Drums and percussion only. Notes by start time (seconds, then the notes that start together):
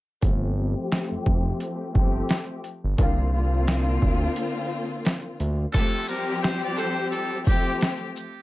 0.22 kick, closed hi-hat
0.92 snare, closed hi-hat
1.26 kick
1.60 closed hi-hat
1.95 kick
2.29 snare, closed hi-hat
2.64 closed hi-hat
2.98 kick, closed hi-hat
3.68 snare, closed hi-hat
4.02 kick
4.36 closed hi-hat
5.05 snare, closed hi-hat
5.40 closed hi-hat
5.74 kick, closed hi-hat, crash
6.08 shaker
6.44 snare, closed hi-hat
6.77 closed hi-hat, shaker
7.12 closed hi-hat
7.47 kick, closed hi-hat, shaker
7.81 snare, closed hi-hat
8.16 shaker